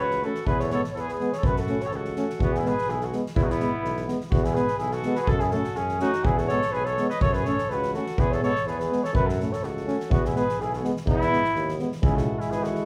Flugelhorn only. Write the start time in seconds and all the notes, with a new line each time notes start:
0.00 B4
0.24 A4
0.47 B4
0.60 C#5
0.72 C#5
0.92 B4 C#5
1.09 B4
1.33 C#5
1.44 B4
1.57 A4
1.82 C#5
1.93 A4
2.41 F#4
2.53 G#4
2.66 B4
2.90 G#4
3.02 A4
3.36 E4
3.43 F#4
3.49 E4
4.30 F#4
4.44 G#4
4.54 B4
4.77 G#4
4.92 A4
5.15 A4 B4
5.20 B4
5.27 A4
5.40 G#4
5.51 A4
5.76 G#4
6.01 F#4
6.25 G#4
6.37 A4
6.48 C#5
6.72 B4
6.85 C#5
7.09 D#5
7.22 C#5
7.33 B4
7.44 C#5
7.69 B4
7.94 A4
8.19 B4
8.31 C#5
8.43 C#5
8.67 B4
8.78 B4
9.03 C#5
9.14 B4
9.26 A4
9.52 C#5
9.64 A4
10.12 F#4
10.25 G#4
10.35 B4
10.60 G#4
10.73 A4
11.09 E4
12.04 G#4
12.16 A4
12.39 G#4
12.51 B4
12.64 A4